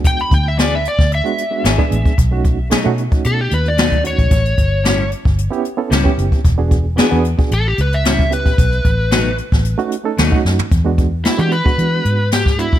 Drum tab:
HH |xxx-x-x-xxx-x-xx|x-x-x-xxx-xxxxxx|xxx-x-x-xxx-x-xx|x-x-x-xxx-xxxxxx|
SD |----o--o----o---|----o-------o---|----o-------o---|----o-------o---|
FT |----------------|----------------|----------------|----------------|
BD |o-o----o-----o-o|o-o----o-----o-o|o-o----o-----o-o|o-o----o-----o-o|

HH |xxx-x-x-xxx-x---|x-x-xxx-x-x-x-x-|
SD |----o--o----o-o-|----o-------oo--|
FT |---------------o|----------------|
BD |o-o----o-----o--|o-o----o-----o-o|